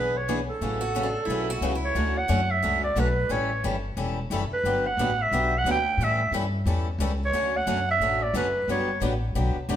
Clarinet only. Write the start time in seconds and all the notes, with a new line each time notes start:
Already playing: B4
0.17 C#5
0.49 A4
1.84 C#5
2.18 F#5
2.51 E5
2.84 D5
3.00 B4
3.32 C#5
4.53 B4
4.87 F#5
5.22 E5
5.58 F#5
5.71 G5
6.04 E5
7.25 C#5
7.57 F#5
7.91 E5
8.22 D5
8.36 B4
8.71 C#5